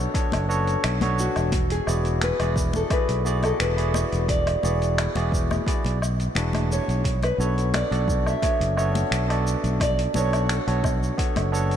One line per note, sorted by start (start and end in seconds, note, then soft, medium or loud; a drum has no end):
0.00 0.10 B3 medium
0.00 0.11 D4 medium
0.00 0.11 F#4 medium
0.00 0.11 A4 medium
0.00 0.11 C#5 loud
0.14 0.45 B3 medium
0.14 0.45 D4 medium
0.14 0.45 F#4 medium
0.14 0.46 A4 medium
0.14 0.46 C#5 loud
0.14 kick loud
0.14 closed hi-hat medium
0.14 cabasa soft
0.32 0.75 F#1 medium
0.32 closed hi-hat soft
0.32 muted conga medium
0.32 cabasa soft
0.32 low woodblock medium
0.48 0.97 B3 medium
0.48 0.97 D4 medium
0.48 0.97 F#4 medium
0.48 0.98 A4 medium
0.48 0.98 C#5 loud
0.48 cabasa medium
0.67 closed hi-hat soft
0.67 cabasa soft
0.84 1.27 B1 loud
0.84 finger snap loud
0.84 closed hi-hat medium
0.84 cabasa soft
0.84 low woodblock medium
1.01 1.51 B3 medium
1.01 1.51 D4 medium
1.01 1.51 F#4 medium
1.01 1.51 A4 medium
1.01 1.51 C#5 loud
1.01 closed hi-hat soft
1.01 muted conga soft
1.01 high conga medium
1.01 cabasa soft
1.19 1.73 F#4 medium
1.19 cabasa medium
1.36 1.79 E1 medium
1.36 closed hi-hat soft
1.36 cabasa soft
1.36 low woodblock medium
1.52 kick loud
1.52 closed hi-hat medium
1.52 muted conga medium
1.52 cabasa soft
1.70 2.23 G#4 medium
1.70 closed hi-hat soft
1.70 cabasa soft
1.87 2.31 E1 loud
1.87 2.36 B3 medium
1.87 2.36 E4 medium
1.87 2.36 F#4 medium
1.87 2.36 G#4 medium
1.87 2.36 D5 loud
1.87 cabasa medium
1.87 low woodblock medium
2.05 closed hi-hat soft
2.05 cabasa soft
2.21 2.76 B4 medium
2.21 finger snap loud
2.21 closed hi-hat medium
2.21 muted conga medium
2.21 cabasa soft
2.39 2.82 E1 loud
2.39 2.87 B3 medium
2.39 2.87 E4 medium
2.39 2.87 F#4 medium
2.39 2.87 G#4 medium
2.39 2.88 D5 loud
2.39 closed hi-hat soft
2.39 cabasa soft
2.39 low woodblock medium
2.56 kick loud
2.56 cabasa medium
2.73 2.92 A4 medium
2.73 muted conga medium
2.73 cabasa soft
2.90 3.21 B3 medium
2.90 3.21 E4 medium
2.90 3.22 F#4 medium
2.90 3.22 G#4 medium
2.90 3.44 B4 medium
2.90 3.22 D5 loud
2.90 kick loud
2.90 closed hi-hat medium
2.90 cabasa soft
2.90 low woodblock medium
3.09 3.51 B1 medium
3.09 closed hi-hat soft
3.09 cabasa soft
3.25 3.73 B3 loud
3.25 3.74 E4 medium
3.25 3.74 F#4 medium
3.25 3.74 G#4 medium
3.25 3.74 D5 loud
3.25 cabasa medium
3.43 3.59 A4 medium
3.43 closed hi-hat soft
3.43 muted conga soft
3.43 cabasa soft
3.43 low woodblock medium
3.60 4.03 E1 medium
3.60 4.29 B4 loud
3.60 finger snap loud
3.60 closed hi-hat medium
3.60 cabasa soft
3.76 4.59 B3 medium
3.76 4.59 E4 medium
3.76 4.59 F#4 medium
3.76 4.60 G#4 medium
3.76 4.60 D5 loud
3.76 closed hi-hat soft
3.76 cabasa soft
3.94 muted conga medium
3.94 cabasa medium
3.94 low woodblock medium
4.12 4.55 E1 medium
4.12 closed hi-hat soft
4.12 cabasa soft
4.29 5.63 D5 loud
4.29 kick loud
4.29 closed hi-hat medium
4.29 cabasa soft
4.47 closed hi-hat soft
4.47 cabasa soft
4.47 low woodblock medium
4.63 5.06 E1 loud
4.63 5.11 B3 medium
4.63 5.11 E4 medium
4.63 5.12 F#4 medium
4.63 5.12 G#4 medium
4.63 5.12 D5 medium
4.63 muted conga soft
4.63 cabasa medium
4.82 closed hi-hat soft
4.82 cabasa soft
4.98 finger snap loud
4.98 closed hi-hat medium
4.98 cabasa soft
4.98 low woodblock medium
5.15 5.58 E1 medium
5.15 5.63 B3 medium
5.15 5.63 E4 medium
5.15 5.63 F#4 medium
5.15 5.63 G#4 medium
5.15 5.63 D5 loud
5.15 closed hi-hat soft
5.15 muted conga medium
5.15 cabasa soft
5.32 kick loud
5.32 cabasa medium
5.51 high conga medium
5.51 cabasa soft
5.51 low woodblock medium
5.67 5.97 B3 medium
5.67 5.98 E4 medium
5.67 5.98 F#4 medium
5.67 5.98 G#4 medium
5.67 5.98 D5 loud
5.67 kick loud
5.67 closed hi-hat medium
5.67 cabasa soft
5.84 6.27 B1 medium
5.84 closed hi-hat soft
5.84 muted conga soft
5.84 cabasa soft
6.02 cabasa medium
6.02 low woodblock medium
6.20 closed hi-hat soft
6.20 cabasa soft
6.35 6.79 E1 medium
6.35 7.03 B3 medium
6.35 7.03 D4 medium
6.35 7.03 E4 medium
6.35 7.03 F#4 medium
6.35 7.03 G#4 medium
6.35 finger snap loud
6.35 closed hi-hat medium
6.35 muted conga medium
6.35 cabasa soft
6.53 closed hi-hat soft
6.53 high conga medium
6.53 cabasa soft
6.53 low woodblock medium
6.72 7.24 C#5 loud
6.72 cabasa medium
6.88 7.31 B1 medium
6.88 closed hi-hat soft
6.88 cabasa soft
7.04 kick loud
7.04 closed hi-hat medium
7.04 cabasa soft
7.23 7.76 B4 loud
7.23 closed hi-hat soft
7.23 muted conga soft
7.23 cabasa soft
7.23 low woodblock medium
7.38 7.82 B1 loud
7.38 7.87 B3 medium
7.38 7.88 D4 medium
7.38 7.88 F#4 medium
7.38 7.88 A4 medium
7.38 7.88 C#5 loud
7.38 cabasa medium
7.58 closed hi-hat soft
7.58 cabasa soft
7.74 8.28 D5 loud
7.74 finger snap loud
7.74 closed hi-hat medium
7.74 muted conga medium
7.74 cabasa soft
7.74 low woodblock medium
7.91 8.34 B1 medium
7.91 8.38 B3 medium
7.91 8.38 D4 medium
7.91 8.39 F#4 medium
7.91 8.39 A4 medium
7.91 8.39 D5 loud
7.91 closed hi-hat soft
7.91 cabasa soft
8.08 kick loud
8.08 cabasa medium
8.26 9.82 E5 loud
8.26 cabasa soft
8.26 low woodblock medium
8.42 8.73 B3 medium
8.42 8.73 D4 medium
8.42 8.74 F#4 medium
8.42 8.74 A4 medium
8.42 8.74 C#5 loud
8.42 kick loud
8.42 closed hi-hat medium
8.42 muted conga medium
8.42 cabasa soft
8.60 9.03 F#1 medium
8.60 closed hi-hat soft
8.60 cabasa soft
8.77 9.25 B3 medium
8.77 9.25 D4 medium
8.77 9.25 F#4 medium
8.77 9.26 A4 medium
8.77 9.26 C#5 loud
8.77 cabasa medium
8.77 low woodblock medium
8.95 closed hi-hat soft
8.95 muted conga medium
8.95 cabasa soft
9.11 9.54 B1 medium
9.11 finger snap loud
9.11 closed hi-hat medium
9.11 cabasa soft
9.28 10.10 B3 medium
9.28 10.11 D4 medium
9.28 10.11 F#4 medium
9.28 10.12 A4 medium
9.28 10.12 D5 loud
9.28 closed hi-hat soft
9.28 cabasa soft
9.28 low woodblock medium
9.47 cabasa medium
9.64 10.06 B1 medium
9.64 closed hi-hat soft
9.64 muted conga soft
9.64 cabasa soft
9.80 10.17 D5 loud
9.80 kick loud
9.80 closed hi-hat medium
9.80 cabasa soft
9.80 low woodblock medium
9.99 closed hi-hat soft
9.99 cabasa soft
10.14 10.58 B1 loud
10.14 10.63 B3 medium
10.14 10.63 D4 medium
10.14 10.63 F#4 medium
10.14 10.64 A4 medium
10.14 10.64 C#5 loud
10.14 10.52 C#5 loud
10.14 muted conga medium
10.14 cabasa medium
10.33 closed hi-hat soft
10.33 cabasa soft
10.33 low woodblock medium
10.49 11.76 A4 medium
10.49 finger snap loud
10.49 closed hi-hat medium
10.49 cabasa soft
10.67 11.10 B1 loud
10.67 11.14 B3 medium
10.67 11.14 D4 medium
10.67 11.15 F#4 medium
10.67 11.15 A4 medium
10.67 11.15 C#5 medium
10.67 closed hi-hat soft
10.67 cabasa soft
10.84 kick loud
10.84 muted conga medium
10.84 cabasa medium
10.84 low woodblock medium
11.03 cabasa soft
11.18 11.49 B3 medium
11.18 11.49 D4 medium
11.18 11.49 F#4 medium
11.18 11.49 A4 medium
11.18 11.49 C#5 loud
11.18 kick loud
11.18 closed hi-hat medium
11.18 cabasa soft
11.36 11.76 F#1 medium
11.36 closed hi-hat soft
11.36 muted conga medium
11.36 cabasa soft
11.36 low woodblock medium
11.52 11.76 B3 medium
11.52 11.76 D4 medium
11.52 11.76 F#4 medium
11.52 11.76 A4 medium
11.52 11.76 C#5 loud
11.52 cabasa medium
11.71 closed hi-hat soft
11.71 cabasa soft